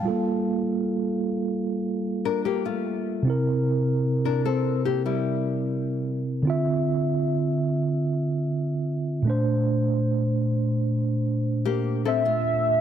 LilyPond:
<<
  \new Staff \with { instrumentName = "Soft synth lead" } { \time 4/4 \key g \dorian \tempo 4 = 75 r1 | r1 | r1 | r2. e''4 | }
  \new Staff \with { instrumentName = "Nylon-string guitar" } { \time 4/4 \key g \dorian r2 r8. <d' bes'>16 <bes g'>16 <a f'>8. | r4 r16 <d' bes'>16 <c' a'>8 <bes g'>16 <g e'>4. r16 | r1 | r2 r8 <bes g'>8 <c' a'>16 <a f'>8. | }
  \new Staff \with { instrumentName = "Tine electric piano" } { \time 4/4 \key g \dorian << { f''16 r2. r8. | r1 | r1 | r1 | } \\ { <g bes f' a'>1 | <c c' e' bes'>1 | <d c' f' e''>2.~ <d c' f' e''>8 <bes, a d' c''>8~ | <bes, a d' c''>2.~ <bes, a d' c''>8 r8 | } >> }
>>